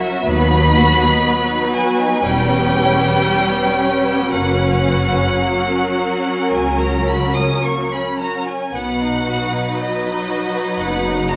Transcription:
Already playing: F#3 C#4 A#4 E5
0.00 F#4
0.24 D#2 B3 B4 B5
0.51 D#4
0.75 F#4
0.99 D#4
1.25 B3
1.50 D#4
1.73 F#4 G#5
1.99 D#4
2.23 E1 E2 G3 C#4 G5
2.49 B3
2.73 C#4
2.98 B3
3.25 G3
3.50 B3
3.77 C#4
4.03 B3
4.31 F#1 F#2 F#3 A#3 F#5
4.60 C#4
4.88 F#4
5.15 C#4
5.42 A#3 A#4
5.70 C#4
5.97 F#4
6.26 C#4
6.53 C#2 A#3 G#5
6.80 C#4 A#5
7.08 F#4 B5
7.35 C#4 D#6
7.64 A#3 C#6
7.92 C#4 B5
8.20 F#4 A#5
8.47 C#4 G#5
8.73 B1 B2 F#3 B3 D#4 B4 F#5
9.00 D#4
9.27 F#4
9.52 D#4
9.76 B3 D#5
10.03 D#4
10.30 F#4
10.56 D#4
10.79 F#1 F#2 B3 F#5
11.07 D#4
11.29 F#4 A#5

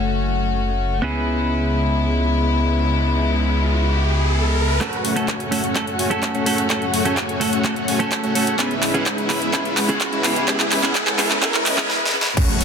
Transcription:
Already playing: F#1 A3 C#4 F#4 A4
1.02 C#2 C#3 G#3 B3 C#4 E4 G#4, riser
4.80 F#2 A3 C#4 F#4 A4 C#5 F#5, kick, clap, closed hi-hat, riser
4.93 closed hi-hat
5.05 open hi-hat
5.16 A3 C#4 F#4 A4 C#5 G#5, closed hi-hat
5.28 kick, clap, closed hi-hat
5.40 closed hi-hat
5.51 A3 C#4 F#4 A4 C#5 F#5, open hi-hat
5.64 closed hi-hat
5.75 A3 C#4 F#4 A4, kick, clap, closed hi-hat
5.87 closed hi-hat
5.99 A3 C#4 F#4 C#5 G#5, open hi-hat
6.10 A3 C#4 F#4 A4, closed hi-hat
6.23 kick, clap, closed hi-hat
6.35 A3 C#4 F#4 C#5 F#5, closed hi-hat
6.46 A3 C#4 F#4 A4, open hi-hat
6.58 closed hi-hat
6.69 A3 C#4 F#4 A4 C#5 F#5, kick, clap, closed hi-hat
6.82 closed hi-hat
6.94 open hi-hat
7.05 A3 C#4 F#4 A4 C#5 G#5, closed hi-hat
7.17 kick, clap, closed hi-hat
7.29 closed hi-hat
7.40 A3 C#4 F#4 A4 C#5 F#5, open hi-hat
7.53 closed hi-hat
7.64 A3 C#4 F#4 A4, kick, clap, closed hi-hat
7.76 closed hi-hat
7.88 A3 C#4 F#4 C#5 G#5, open hi-hat
7.99 A3 C#4 F#4 A4, closed hi-hat
8.12 kick, clap, closed hi-hat
8.23 A3 C#4 F#4 C#5 F#5, closed hi-hat
8.35 A3 C#4 F#4 A4, open hi-hat
8.47 closed hi-hat
8.58 C#2 G#3 B3 C#4 E4 G#4 B4 E5, kick, clap, closed hi-hat
8.71 closed hi-hat
8.83 clap, open hi-hat
8.94 G#3 B3 C#4 E4 G#4 B4 F#5, closed hi-hat
9.06 kick, clap, closed hi-hat
9.18 closed hi-hat
9.30 G#3 B3 C#4 E4 G#4 B4 E5, clap, open hi-hat
9.42 closed hi-hat
9.53 B3 C#4 E4 G#4, kick, clap, closed hi-hat
9.65 closed hi-hat
9.77 G#3 C#4 E4 B4 F#5, clap, open hi-hat
9.89 B3 C#4 E4 G#4, closed hi-hat
10.01 kick, clap, closed hi-hat
10.13 G#3 C#4 E4 B4 E5, closed hi-hat
10.24 B3 C#4 E4 G#4, clap, open hi-hat
10.36 closed hi-hat
10.47 G#3 B3 C#4 E4 G#4 B4 E5, kick, clap, closed hi-hat
10.60 clap, closed hi-hat
10.72 clap, open hi-hat
10.83 G#3 B3 C#4 E4 G#4 B4 F#5, clap, closed hi-hat
10.95 kick, clap, closed hi-hat
11.07 clap, closed hi-hat
11.18 G#3 B3 C#4 E4 G#4 B4 E5, clap, open hi-hat
11.31 clap, closed hi-hat
11.42 B3 C#4 E4 G#4, kick, clap, closed hi-hat
11.54 clap, closed hi-hat
11.66 G#3 C#4 E4 B4 D#5, clap, open hi-hat
11.78 B3 C#4 E4 G#4, clap
11.90 snare
12.06 snare
12.21 snare
12.37 C#3 F#3 A3 C#4 F#4 C#5 F#5, kick, closed hi-hat, crash, ride, impact
12.49 closed hi-hat
12.61 F#1, open hi-hat

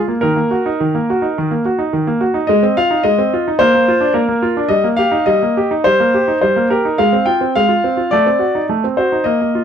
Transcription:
Already playing: F4
0.08 A#3
0.21 D#3 A#4
0.36 A#3
0.51 F#4
0.66 D#4
0.80 D#3
0.95 A#3
1.10 F#4
1.22 D#4
1.38 D#3
1.51 A#3
1.65 F#4
1.79 D#4
1.93 D#3
2.07 A#3
2.21 F#4
2.34 D#4
2.47 G#3 D#5
2.63 C4
2.77 F4 F5
2.91 D#4
3.03 G#3 D#5
3.18 C4
3.33 F4
3.48 D#4
3.59 A#3 C5
3.74 A#3
3.88 F4
4.01 D4
4.14 A#3 A#4
4.28 A#3
4.42 F4
4.57 D4
4.69 G3 D#5
4.84 A#3
4.97 G4 F5
5.12 D#4
5.26 G3 D#5
5.43 A#3
5.57 G4
5.71 D#4
5.84 G3 C5
6.00 A#3
6.14 G4
6.28 D#4
6.41 G3 C5
6.56 A#3
6.70 G4 A#4
6.85 D#4
6.98 G#3 F5
7.13 C4
7.26 F4 G5
7.41 C4
7.55 G#3 F5
7.69 F4
7.84 C4
7.97 F4
8.11 A3 D5
8.26 C4
8.39 F#4
8.55 D#4
8.69 A3
8.84 C4
8.97 F#4 C5
9.12 D#4
9.24 A#3 D#5
9.41 A#3
9.55 F4

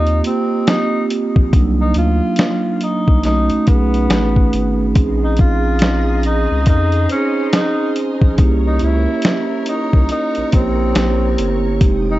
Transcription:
Already playing: D#2 A#3 C4 D#4 F4 G4
0.07 closed hi-hat
0.23 A#3 C4 F4, closed hi-hat
0.27 G4
0.67 D#4, snare, closed hi-hat
1.10 closed hi-hat
1.36 A#1, kick
1.51 C2 F#3 A#3 D4 D#4, kick, closed hi-hat
1.81 D#4
1.94 D2 F4, closed hi-hat
2.36 snare, closed hi-hat
2.81 D#4, closed hi-hat
3.08 C2, kick
3.22 B1 A3 C#4 D#4, snare, closed hi-hat
3.26 F#4
3.50 B1, closed hi-hat
3.66 B1 A3 B3 C#4 D#4 G#4, kick, closed hi-hat
3.94 closed hi-hat
4.10 A1, snare, closed hi-hat
4.36 kick
4.53 G#1, closed hi-hat
4.94 A#1 C4 C#4 D#4 G#4 D#5 A#5 C6, kick, closed hi-hat
5.24 D#4
5.37 F4, kick, closed hi-hat
5.79 snare, closed hi-hat
6.23 D#4, closed hi-hat
6.51 C#2
6.66 F2 D#4, kick, closed hi-hat
6.92 closed hi-hat
7.08 C#4 D#4 C5, closed hi-hat
7.13 G#4
7.53 D#4, snare, closed hi-hat
7.96 closed hi-hat
8.21 A#1, kick
8.37 C2 A#3 C#4 E4 G4 A#4 C#5 C#6, kick, closed hi-hat
8.67 D#4
8.79 C#2, closed hi-hat
8.83 E4
9.22 snare, closed hi-hat
9.66 D#4, closed hi-hat
9.93 C2, kick
10.09 D#4, closed hi-hat
10.35 A#1, closed hi-hat
10.51 A#1 A#3 E4 G4 C#5, kick, closed hi-hat
10.55 C4
10.95 A#1, snare, closed hi-hat
11.38 G1, closed hi-hat
11.79 F1 G#3 C4 D#4 G5 D#6, kick, closed hi-hat
11.83 G4
12.11 D#4

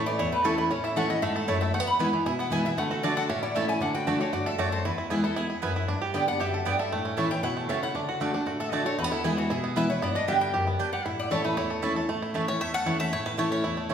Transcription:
Already playing: A2 A3 E4
0.06 E3 C#4 E4 D5
0.19 E2 E4 C#5
0.32 A3 B4
0.44 E3 A3 C#4 E4 A4 C#5 A5
0.58 E4 B4
0.71 A2 C#4 C#5
0.84 E4 E5
0.96 E3 A3 C#4 E4 A4 C#5 F#5 A5
1.09 C#4 E4 D#5
1.22 G#2 A3 E5
1.36 A4
1.48 F#2 A3 E4 C#5 A5
1.61 A3 E5
1.74 E2 A3 F#5
1.80 B3
1.87 B5
1.99 E3 G#3 B3 E4 B4 G#5
2.13 E3 B3 E4
2.26 B2 E4 G#5
2.39 B3 F#5
2.50 E3 G#3 B3 E4 B4 G#5
2.65 B3 E4 E5
2.77 D3 A3 F#5
2.91 F#4 A4
3.03 D3 A3 D4 F#4 D5 A5
3.17 A4 F#5
3.29 A2 C#4 E5
3.43 E4 D5
3.55 E3 A3 C#4 E4 C#5 E5 A5
3.68 C#4 E4 G#5
3.81 D3 D4 F#5
3.94 F#4 G5
4.07 D3 A3 D4 F#4 D5 E5 A5
4.20 D4 F#4 C#5
4.33 G2 F#4 D5
4.46 A4 E5
4.58 F#2 A3 F#4 C#5 D5 A5
4.72 A4 C5
4.85 E2 E4 B4
4.98 E4
5.10 E3 G#3 B3 E4 B4 G#5
5.23 B3 E4 A4
5.36 E2 E4 G#4
5.50 E4
5.62 F#2 B3 E4 B4 G#5
5.76 E4
5.88 G2 D4
6.02 G4
6.14 D3 G3 B3 G4 D5 G5
6.28 B3 D4 G4 F#5
6.40 F#2 G4 E5
6.54 A4
6.65 G2 B3 G4 D5 G5
6.79 A4 E5
6.92 A2 A3
7.05 C#4
7.17 E3 A3 C#4 E4 C#5 E5 A5
7.30 E3 C#4 E4 G5
7.43 B2 E4 F#5
7.57 A3
7.69 C#3 A3 C#4 E4 C#5 E5 A5
7.83 E4 F#5
7.95 D3 D4
8.09 F#4
8.20 D3 A3 D4 F#4 D5 A5
8.33 D4 F#4
8.46 A2 F#4
8.60 A4 E5
8.72 D3 A3 D4 F#4 D5 A5
8.85 D4 F#4 A4 C#5
8.98 E2 A3 B4
9.04 B3
9.12 E4 A4
9.24 E3 G#3 B3 E4 G#4 B4 G#5
9.37 E3 F#4
9.50 B2 E4 G#4
9.64 B3
9.76 E3 G#3 B3 E4 B4 E5 G#5
9.89 B3 E4 C#5
10.02 G2 B3 D5
10.15 D4 D#5
10.28 D3 G3 B3 G4 D5 E5 G5
10.41 G3 G5
10.54 F#2 G4
10.67 B3
10.79 G2 B3 D4 G4 D5 G5
10.93 G4 F#5
11.06 A2 E4 E5
11.19 D5
11.30 E3 A3 C#4 E4 A4 C#5 A5
11.44 A3 C#4 E4 B4
11.57 E2 E4 C#5
11.70 A4
11.82 E3 A3 C#4 E4 C#5 A5
11.95 C#4 E4 A4
12.09 A2 A3
12.22 E4
12.34 E3 A3 C#4 E4 C#5 A5
12.48 C#4 E4 C#5
12.61 E2 A3 E5
12.74 A4 F#5
12.85 E3 A3 C#4 E4 C#5 A5
12.99 A3 C#4 E4 E5
13.13 A2 A3 C#5
13.26 E4 B4
13.37 E3 A3 C#4 E4 C#5 A5
13.51 C#4 C#5
13.64 E2 E4
13.77 A3
13.89 E3 A3 C#4 E4 C#5 A5

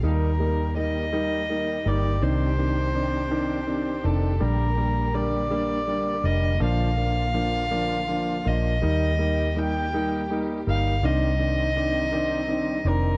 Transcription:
0.03 D#2 D#3 G3 A#3 D#4 G4 A#4
0.40 G3 A#3 D#4
0.76 G3 A#3 D#4 D#5
1.13 G3 A#3 D#4
1.49 G3 A#3 D#4
1.86 G1 G3 A#3 D#4 D5
2.22 C2 D#3 C4 D4 C5
2.58 D#3 C4 D4
2.94 D#3 C4 D4
3.31 D#3 C4 D4
3.67 D#3 C4 D4
4.03 F1 D#3 C4 D4 A4
4.40 A#1 D3 G3 A#3 D4 A#4
4.77 G3 A#3 D4
5.14 G3 A#3 D4 D5
5.51 G3 A#3 D4
5.87 G3 A#3 D4
6.24 F1 G3 A#3 D4 D#5
6.60 A#1 F3 A#3 D4 F4 F5
6.97 F3 A#3 D4
7.34 F3 A#3 D4
7.71 F3 A#3 D4
8.08 F3 A#3 D4
8.45 A#1 F3 A#3 D4 D#5
8.82 D#2 D#3 G3 A#3 D#4 G4
9.19 G3 A#3 D#4
9.56 G3 A#3 D#4 G5
9.93 G3 A#3 D#4
10.30 G3 A#3 D#4
10.67 G1 G3 A#3 D#4 F5
11.03 C2 D#3 C4 D4 D#4 D#5
11.39 D#3 C4 D4
11.76 D#3 C4 D4
12.12 D#3 C4 D4
12.48 D#3 C4 D4
12.85 F1 D#3 C4 D4 A#4

